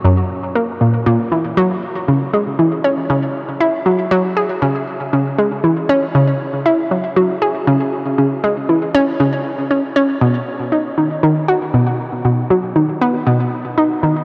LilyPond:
\new Staff \with { instrumentName = "Synth arpeggio sound" } { \clef bass \time 4/4 \key cis \dorian \tempo 4 = 118 fis,8 r8 ais8 ais,8 ais,8 e8 fis8 r8 | cis8 gis8 e8 cis'8 cis8 r8 e'8 fis8 | fis8 gis'8 cis8 r8 cis8 gis8 e8 cis'8 | cis8 r8 e'8 fis8 fis8 gis'8 cis8 r8 |
cis8 gis8 e8 cis'8 cis8 r8 cis'8 cis'8 | b,8 r8 dis'8 dis8 dis8 fis'8 b,8 r8 | b,8 fis8 dis8 b8 b,8 r8 dis'8 dis8 | }